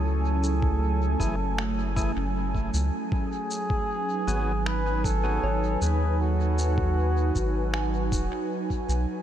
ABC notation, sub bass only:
X:1
M:4/4
L:1/16
Q:1/4=78
K:G#phr
V:1 name="Sub bass" clef=bass
C,,6 F,,,4- F,,, F,,,3 C,, z | z6 G,,,6 G,,,2 D,,2- | D,,6 G,,,4 D,,, z3 B,,, z |]